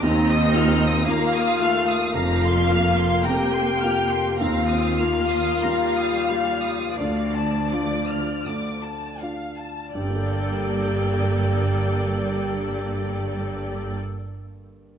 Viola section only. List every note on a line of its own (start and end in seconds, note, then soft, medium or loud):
0.04 1.05 C4 medium
1.07 1.60 A#3 medium
1.59 2.14 A3 medium
2.14 4.39 A#3 medium
4.40 5.00 C4 medium
5.00 5.63 A#3 medium
5.63 6.96 G3 medium
6.99 9.21 F3 soft
9.95 13.94 A#3 medium
9.95 13.94 A4 medium